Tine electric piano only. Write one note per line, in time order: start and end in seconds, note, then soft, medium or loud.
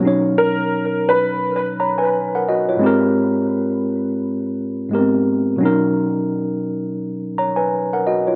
0.00 2.76 B2 medium
0.00 2.77 F#3 medium
0.00 2.78 C#4 medium
0.05 2.80 D#4 medium
0.05 1.77 C#5 medium
1.80 2.00 C#5 medium
1.80 2.00 A#5 medium
1.98 2.33 B4 medium
1.98 2.32 G#5 medium
2.35 2.48 A#4 medium
2.35 2.47 F#5 medium
2.49 2.69 F#4 medium
2.49 2.69 D#5 medium
2.69 3.03 F4 medium
2.69 3.03 C#5 medium
2.77 4.85 G#2 medium
2.77 4.86 G#3 medium
2.81 4.87 C4 medium
2.81 4.89 G4 medium
2.86 4.90 A#4 medium
4.90 5.61 G#2 medium
4.90 5.61 G#3 medium
4.90 5.00 B3 soft
4.90 5.63 G4 medium
4.95 5.63 A#4 medium
4.99 5.65 C4 medium
5.56 8.34 B2 medium
5.56 8.35 F#3 medium
5.61 8.36 C#4 medium
5.61 8.36 D#4 medium
5.65 7.35 A#4 medium
7.38 7.58 C#5 medium
7.38 7.58 A#5 medium
7.56 7.91 B4 medium
7.56 7.90 G#5 medium
7.93 8.06 A#4 medium
7.93 8.06 F#5 medium
8.07 8.28 F#4 medium
8.07 8.27 D#5 medium
8.27 8.36 F4 medium
8.27 8.36 C#5 medium